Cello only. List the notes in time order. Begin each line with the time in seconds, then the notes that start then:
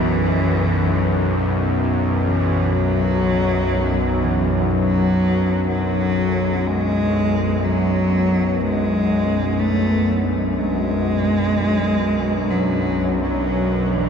Already playing: E3
2.21 E3
2.72 F#3
4.21 E3
4.71 F#3
5.68 F#3
6.67 G#3
7.64 F#3
8.61 G#3
9.59 A3
10.55 G#3
12.50 F#3
13.22 F#3
13.93 E3